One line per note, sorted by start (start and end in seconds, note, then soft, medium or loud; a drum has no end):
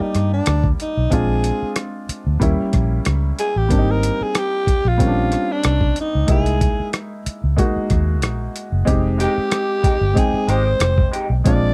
0.00 1.13 G3 medium
0.00 1.14 A#3 medium
0.00 1.11 D4 soft
0.00 0.33 D#4 medium
0.00 1.13 F4 medium
0.00 0.73 G4 medium
0.00 0.73 D5 medium
0.00 muted fingered electric bass stroke soft
0.15 0.40 G2 medium
0.15 cross-stick soft
0.15 closed hi-hat soft
0.33 0.68 D4 medium
0.46 0.72 D2 medium
0.46 cross-stick medium
0.46 closed hi-hat medium
0.64 kick medium
0.80 1.15 D#4 medium
0.80 closed hi-hat soft
0.97 1.09 B1 medium
1.10 1.50 A#1 medium
1.10 2.01 G#3 medium
1.10 2.01 C4 medium
1.10 2.02 D4 medium
1.10 2.02 F4 medium
1.10 1.77 G#4 medium
1.10 kick medium
1.10 closed hi-hat medium
1.44 closed hi-hat medium
1.62 muted fingered electric bass stroke soft
1.76 cross-stick medium
1.76 closed hi-hat medium
2.09 muted fingered electric bass stroke soft
2.09 closed hi-hat medium
2.27 2.38 D2 medium
2.40 2.55 D#2 medium
2.40 3.31 G3 medium
2.40 3.31 A#3 medium
2.40 3.32 C#4 medium
2.40 3.32 E4 medium
2.40 kick medium
2.40 closed hi-hat medium
2.73 2.99 A#1 medium
2.73 kick medium
2.73 cross-stick soft
2.73 closed hi-hat medium
3.05 3.31 C#2 medium
3.05 cross-stick medium
3.05 closed hi-hat medium
3.39 3.59 G#4 medium
3.39 closed hi-hat medium
3.56 3.67 A1 medium
3.56 3.92 G4 medium
3.69 4.09 G#1 medium
3.69 4.60 G3 medium
3.69 4.60 A#3 medium
3.69 4.61 C4 medium
3.69 3.78 D4 medium
3.69 kick medium
3.69 closed hi-hat medium
3.79 4.65 D#4 medium
3.91 4.24 A#4 medium
4.03 closed hi-hat medium
4.21 4.40 G#4 medium
4.21 muted fingered electric bass stroke soft
4.35 4.90 G4 medium
4.35 cross-stick medium
4.35 closed hi-hat medium
4.67 muted fingered electric bass stroke soft
4.67 kick medium
4.67 closed hi-hat medium
4.85 5.35 A#1 medium
4.85 5.53 F4 medium
4.98 5.89 G3 medium
4.98 5.89 A#3 medium
4.98 5.90 C4 soft
4.98 5.07 C#4 soft
4.98 kick medium
4.98 closed hi-hat medium
5.07 5.93 D4 medium
5.32 cross-stick soft
5.32 closed hi-hat soft
5.52 5.98 D4 medium
5.63 5.90 C2 medium
5.63 cross-stick medium
5.63 closed hi-hat medium
5.81 kick medium
5.96 closed hi-hat medium
6.01 6.29 D#4 medium
6.15 6.26 C#2 medium
6.27 6.67 C2 medium
6.27 7.18 G#3 medium
6.27 7.19 A#3 medium
6.27 7.19 D#4 medium
6.27 7.19 E4 medium
6.27 kick medium
6.27 closed hi-hat medium
6.31 6.90 G#4 medium
6.46 closed hi-hat soft
6.61 kick medium
6.61 closed hi-hat medium
6.80 muted fingered electric bass stroke soft
6.93 cross-stick medium
6.93 closed hi-hat medium
7.26 muted fingered electric bass stroke soft
7.26 closed hi-hat medium
7.44 7.55 C#2 medium
7.57 8.47 G#3 medium
7.57 8.47 A#3 medium
7.57 8.48 D#4 medium
7.57 8.49 F#4 medium
7.57 kick medium
7.57 closed hi-hat medium
7.76 muted fingered electric bass stroke soft
7.90 8.23 D#2 medium
7.90 kick medium
7.90 cross-stick soft
7.90 closed hi-hat medium
8.22 8.47 A#1 medium
8.22 cross-stick medium
8.22 closed hi-hat medium
8.56 closed hi-hat medium
8.72 8.84 F#1 medium
8.85 9.26 F1 medium
8.85 9.76 G#3 medium
8.85 9.77 C4 medium
8.85 9.77 D#4 medium
8.85 9.78 G4 medium
8.85 kick loud
8.85 closed hi-hat medium
9.18 9.32 G#3 medium
9.18 9.33 D#4 medium
9.18 9.33 G4 medium
9.18 10.19 G4 medium
9.18 closed hi-hat medium
9.38 muted fingered electric bass stroke soft
9.51 muted clean electric guitar stroke soft
9.51 cross-stick medium
9.51 closed hi-hat medium
9.83 9.94 G#3 soft
9.83 9.94 D#4 medium
9.83 9.95 G4 medium
9.83 muted fingered electric bass stroke soft
9.83 kick medium
9.83 closed hi-hat medium
10.01 10.13 G1 medium
10.01 muted clean electric guitar stroke soft
10.14 11.05 G#3 medium
10.14 11.06 C4 medium
10.14 11.06 D#4 medium
10.14 11.06 G5 medium
10.14 muted clean electric guitar stroke soft
10.14 kick medium
10.14 closed hi-hat medium
10.18 10.51 G#4 medium
10.33 muted clean electric guitar stroke soft
10.33 muted fingered electric bass stroke soft
10.47 10.73 G#1 medium
10.47 10.62 G#3 medium
10.47 10.62 D#4 medium
10.47 10.62 G4 medium
10.47 11.14 C5 medium
10.47 cross-stick soft
10.47 closed hi-hat medium
10.65 muted clean electric guitar stroke soft
10.80 11.05 F1 medium
10.80 muted clean electric guitar stroke soft
10.80 cross-stick medium
10.80 closed hi-hat medium
10.98 muted clean electric guitar stroke soft
10.98 kick medium
11.12 11.26 G#3 medium
11.12 11.26 D#4 medium
11.12 11.27 G4 medium
11.12 closed hi-hat medium
11.29 11.41 B1 medium
11.29 muted clean electric guitar stroke soft
11.44 11.74 A#1 loud
11.44 11.74 G#3 medium
11.44 11.74 C4 medium
11.44 11.74 D4 medium
11.44 11.74 F4 medium
11.44 11.74 D5 loud
11.44 kick loud
11.44 closed hi-hat medium